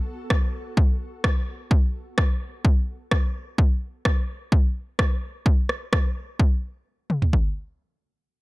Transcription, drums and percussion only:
0.30 kick loud
0.30 cross-stick medium
0.77 kick loud
1.24 kick medium
1.24 cross-stick medium
1.71 kick loud
2.18 kick medium
2.18 cross-stick medium
2.65 kick loud
3.11 kick medium
3.11 cross-stick medium
3.58 kick loud
4.05 kick medium
4.05 cross-stick medium
4.52 kick loud
4.99 kick medium
4.99 cross-stick medium
5.46 kick loud
5.69 cross-stick medium
5.93 kick medium
5.93 cross-stick medium
6.39 kick loud
7.10 mid tom medium
7.22 floor tom medium
7.33 kick medium

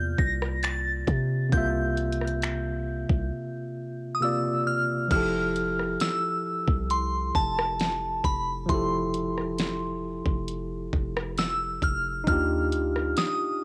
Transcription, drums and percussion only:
0.18 kick medium
0.42 cross-stick medium
0.63 finger snap loud
0.63 closed hi-hat medium
1.07 kick medium
1.07 closed hi-hat medium
1.52 kick loud
1.52 closed hi-hat medium
1.97 closed hi-hat medium
2.12 closed hi-hat medium
2.21 cross-stick medium
2.27 closed hi-hat medium
2.42 finger snap loud
2.42 closed hi-hat medium
3.09 kick loud
5.11 kick loud
5.11 closed hi-hat medium
5.11 crash loud
5.56 closed hi-hat medium
5.79 cross-stick medium
6.00 snare loud
6.00 closed hi-hat medium
6.68 kick loud
6.90 closed hi-hat medium
7.35 kick medium
7.59 cross-stick loud
7.80 snare loud
7.80 closed hi-hat medium
8.24 kick medium
8.24 closed hi-hat medium
8.69 kick loud
8.69 closed hi-hat medium
9.14 closed hi-hat medium
9.38 cross-stick medium
9.59 snare loud
9.59 closed hi-hat medium
10.26 kick loud
10.48 closed hi-hat medium
10.93 kick loud
11.17 cross-stick loud
11.38 snare loud
11.38 closed hi-hat medium
11.82 kick medium
11.82 closed hi-hat medium
12.27 kick loud
12.27 closed hi-hat medium
12.72 closed hi-hat medium
12.96 cross-stick medium
13.17 snare loud
13.17 closed hi-hat medium

